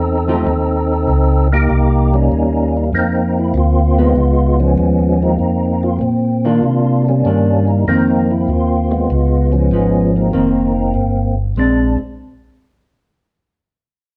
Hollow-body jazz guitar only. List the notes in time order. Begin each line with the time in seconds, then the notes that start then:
0.28 F3 A3 D#4 G4
3.98 F3 B3 D#4
6.45 D#3 A#3 D4
7.26 D#3 A#3 D4
7.88 D#3 A#3 C4
9.72 F3 B3 D#4
10.33 D#3 A#3 C4
11.57 G#3 C4 D4